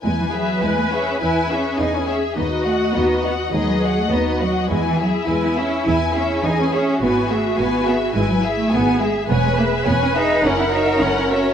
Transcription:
<<
  \new Staff \with { instrumentName = "Violin section" } { \time 4/4 \key e \major \tempo 4 = 104 gis''8 e''8 gis''8 e''8 gis''8 e''8 gis''8 e''8 | dis''8 fis''8 dis''8 fis''8 dis''8 fis''8 dis''8 fis''8 | gis''8 e''8 gis''8 e''8 gis''8 e''8 gis''8 e''8 | gis''8 e''8 gis''8 e''8 gis''8 e''8 gis''8 e''8 |
\key cis \dorian gis''8 e''8 gis''8 e''8 fis''8 e''8 fis''8 e''8 | }
  \new Staff \with { instrumentName = "Viola section" } { \time 4/4 \key e \major b'2. gis'4 | fis'2 gis'4 fis'4 | e'2. gis'4 | fis'2 e'4 gis'4 |
\key cis \dorian b'2 ais'2 | }
  \new Staff \with { instrumentName = "Violin section" } { \time 4/4 \key e \major <e' b'>8 gis'8 <e' b'>8 gis'8 <e' b'>8 gis'8 <e' b'>8 gis'8 | <dis' b'>8 <fis' dis''>8 <dis' b'>8 <fis' dis''>8 <dis' b'>8 <fis' dis''>8 <dis' b'>8 <fis' dis''>8 | <e' b'>8 gis'8 <e' b'>8 gis'8 <e' b'>8 gis'8 <e' b'>8 gis'8 | <e' b'>8 gis'8 <e' b'>8 gis'8 <e' b'>8 gis'8 <e' b'>8 gis'8 |
\key cis \dorian <b' cis''>8 <gis' b'>8 <b' cis''>8 <gis' b'>8 <e' ais'>8 <fis' cis''>8 <e' ais'>8 <fis' cis''>8 | }
  \new Staff \with { instrumentName = "Cello section" } { \time 4/4 \key e \major gis16 e16 fis8 gis16 b16 cis'8 e'8 cis'8 dis'16 cis'16 cis'8 | b8 a8 b8 b8 gis16 fis8 a16 b8 fis8 | gis16 e16 fis8 gis16 b16 cis'8 e'8 cis'8 dis'16 cis'16 cis'8 | b8 a8 b8 b8 gis16 fis8 a16 b8 gis8 |
\key cis \dorian b16 gis16 ais8 b16 cis'16 dis'8 cis'16 e'16 dis'8 cis'8 cis'8 | }
  \new Staff \with { instrumentName = "Double bass section" } { \clef bass \time 4/4 \key e \major e,4 e,4 e,4 e,4 | dis,4 dis,4 dis,4 dis,4 | e,4 e,4 e,4 e,4 | gis,,4 gis,,4 gis,,4 gis,,4 |
\key cis \dorian e,,4 e,,4 fis,,4 fis,,4 | }
>>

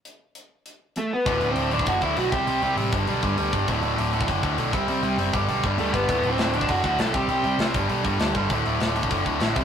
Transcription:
<<
  \new Staff \with { instrumentName = "Lead electric guitar" } { \time 4/4 \key d \mixolydian \tempo 4 = 199 r2. <a a'>8 <b b'>8~ | <b b'>8. <c' c''>8. <d' d''>8 <fis' fis''>8 <e' e''>8 <fis' fis''>8 <g' g''>8~ | <g' g''>4 r2. | r1 |
r2. <a a'>8 <b b'>8~ | <b b'>8. <c' c''>8. <d' d''>8 <fis' fis''>8 <fis' fis''>8 <a' a''>8 <g' g''>8~ | <g' g''>4 r2. | r1 | }
  \new Staff \with { instrumentName = "Distorted electric guitar" } { \clef bass \time 4/4 \key d \mixolydian r1 | <d, a, d>8 <d, a, d>8 <d, a, d>8 <d, a, d>8 <d, a, d>8 <d, a, d>8 <d, a, d>8 <c g c'>8 | <c g c'>8 <c g c'>8 <c g c'>8 <g, d g>8 <g, d g>8 <g, d g>8 <g, d g>8 <g, d g>8 | <d, a, d>8 <d, a, d>8 <d, a, d>8 <d, a, d>8 <d, a, d>8 <d, a, d>8 <d, a, d>8 <c g c'>8 |
<c g c'>8 <c g c'>8 <c g c'>8 <g, d g>8 <g, d g>8 <g, d g>8 <g, d g>8 <g, d g>8 | <d, a, d>8 <d, a, d>8 <d, a, d>8 <d, a, d>8 <d, a, d>8 <d, a, d>8 <d, a, d>8 <c g c'>8 | <c g c'>8 <c g c'>8 <c g c'>8 <g, d g>8 <g, d g>8 <g, d g>8 <g, d g>8 <g, d g>8 | <d, a, d>8 <d, a, d>8 <d, a, d>8 <d, a, d>8 <d, a, d>8 <d, a, d>8 <d, a, d>8 <c g c'>8 | }
  \new Staff \with { instrumentName = "Distorted electric guitar" } { \clef bass \time 4/4 \key d \mixolydian r1 | <d, a, d>8 <d, a, d>8 <d, a, d>8 <d, a, d>8 <d, a, d>8 <d, a, d>8 <d, a, d>8 <c g c'>8 | <c g c'>8 <c g c'>8 <c g c'>8 <g, d g>8 <g, d g>8 <g, d g>8 <g, d g>8 <g, d g>8 | <d, a, d>8 <d, a, d>8 <d, a, d>8 <d, a, d>8 <d, a, d>8 <d, a, d>8 <d, a, d>8 <c g c'>8 |
<c g c'>8 <c g c'>8 <c g c'>8 <g, d g>8 <g, d g>8 <g, d g>8 <g, d g>8 <g, d g>8 | <d, a, d>8 <d, a, d>8 <d, a, d>8 <d, a, d>8 <d, a, d>8 <d, a, d>8 <d, a, d>8 <c g c'>8 | <c g c'>8 <c g c'>8 <c g c'>8 <g, d g>8 <g, d g>8 <g, d g>8 <g, d g>8 <g, d g>8 | <d, a, d>8 <d, a, d>8 <d, a, d>8 <d, a, d>8 <d, a, d>8 <d, a, d>8 <d, a, d>8 <c g c'>8 | }
  \new Staff \with { instrumentName = "Picked electric bass" } { \clef bass \time 4/4 \key d \mixolydian r1 | d,,8 d,,8 d,,4 fis,,8 d,8 b,,8 c,8 | c,8 c,8 a,,8 g,,8 b,,8 g,8 d,8 g,,8 | d,,8 d,,8 d,,4 fis,,8 d,8 b,,8 c,8 |
c,8 c,8 fis,,8 g,,8 b,,8 g,8 d,8 g,,8 | d,,8 d,,8 d,,4 fis,,8 d,8 b,,8 c,8 | c,8 c,8 c,8 g,,8 b,,8 g,8 d,8 g,,8 | d,,8 d,,8 d,,4 fis,,8 d,8 a,,8 c,8 | }
  \new DrumStaff \with { instrumentName = "Drums" } \drummode { \time 4/4 hh4 hh4 hh4 hh4 | <hho bd>8 hho8 hho8 hho16 bd16 <hho bd>8 <hho bd>8 hho8 <hho bd>8 | hho8 hho8 hho8 <hho bd>8 hho8 <hho bd>8 hho8 <hho bd>8 | <hho bd>8 hho8 hho8 hho16 bd16 <hho bd>8 <hho bd>8 hho8 <hho bd>8 |
hho8 hho8 hho8 <hho bd>8 hho8 <hho bd>8 hho8 <hho bd>8 | <hho bd>8 hho8 <hho sn>8 hho16 bd16 <hho bd>8 <hho bd>8 <hho sn>8 <hho bd>8 | hho8 hho8 <hho sn>8 <hho bd>8 hho8 <hho bd>8 <hho sn>8 <hho bd>8 | <hho bd>8 hho8 <hho sn>8 hho16 bd16 <hho bd>8 <hho bd>8 <hho sn>8 <hho bd>8 | }
>>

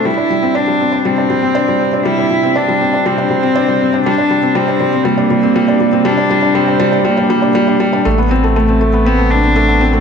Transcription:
<<
  \new Staff \with { instrumentName = "Cello" } { \time 4/4 \key g \mixolydian \tempo 4 = 120 e'4 d'4 c'2 | e'4 d'4 c'2 | d'4 c'4 bes2 | d'4 c'4 bes2 |
r4 a4 b8 d'4. | }
  \new Staff \with { instrumentName = "Felt piano" } { \time 4/4 \key g \mixolydian g16 d'16 g16 c'16 d'16 g16 c'16 d'16 g16 d'16 g16 c'16 d'16 g16 c'16 d'16 | g16 d'16 g16 c'16 d'16 g16 c'16 d'16 g16 d'16 g16 c'16 d'16 g16 c'16 d'16 | g16 d'16 g16 c'16 g16 d'16 g16 c'16 g16 d'16 g16 c'16 g16 d'16 g16 c'16 | g16 d'16 g16 d'16 g16 d'16 g16 d'16 g16 d'16 g16 d'16 g16 d'16 g16 d'16 |
a16 b16 c'16 a16 a16 c'16 a16 b16 c'16 a16 b16 c'16 a16 b16 c'16 a16 | }
  \new Staff \with { instrumentName = "Sub bass" } { \clef bass \time 4/4 \key g \mixolydian r1 | r1 | r1 | r1 |
a,,1 | }
>>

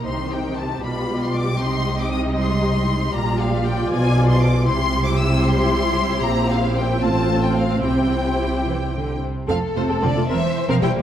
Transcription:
<<
  \new Staff \with { instrumentName = "Violin section" } { \time 6/8 \key c \dorian \tempo 4. = 76 c'''8 g''8 a''8 b''8. c'''16 d'''8 | c'''8. d'''16 ees'''8 c'''4. | \key c \mixolydian bes''8 f''8 g''8 gis''8. c'''16 d'''8 | c'''8. d'''16 e'''8 c'''4. |
bes''8 f''8 g''8 a''8. g''16 f''8 | g''2~ g''8 r8 | f''8 c''8 d''8 e''8. f''16 g''8 | }
  \new Staff \with { instrumentName = "Violin section" } { \time 6/8 \key c \dorian << { c''4. d''4. | ees''2. | \key c \mixolydian d''2. | c''2.~ |
c''2. | c''2~ c''8 r8 | a'4. c''4. | } \\ { g'2.~ | g'2. | g'4. gis'4. | g'2.~ |
g'4. f'4. | g'2~ g'8 r8 | r2. | } >> }
  \new Staff \with { instrumentName = "Viola section" } { \time 6/8 \key c \dorian << { ees'4. f'4. | ees'2. | \key c \mixolydian f'2. | e'2.~ |
e'4. f'4. | e'2~ e'8 r8 | a'16 r16 f'16 a'16 c'16 f'16 bes'16 r8 bes'16 e'16 g'16 | } \\ { ees4. g4.~ | g2.~ | g4. f4. | g2. |
c'2.~ | c'2~ c'8 r8 | c'16 r16 a16 c'16 f16 a16 c'16 r8 c'16 g16 bes16 | } >> }
  \new Staff \with { instrumentName = "Cello section" } { \clef bass \time 6/8 \key c \dorian c4. b,4. | c2. | \key c \mixolydian bes,4. b,4. | c2. |
bes,4. a,4. | c4. e8 d8 c8 | f8 c8 d8 e8. f16 g8 | }
  \new Staff \with { instrumentName = "Double bass section" } { \clef bass \time 6/8 \key c \dorian c,4. b,,4. | c,2. | \key c \mixolydian bes,,4. b,,4. | c,2. |
bes,,4. a,,4. | c,2~ c,8 r8 | f,,16 r16 f,,16 f,,16 f,,16 f,,16 e,,16 r8 e,,16 e,,16 e,,16 | }
>>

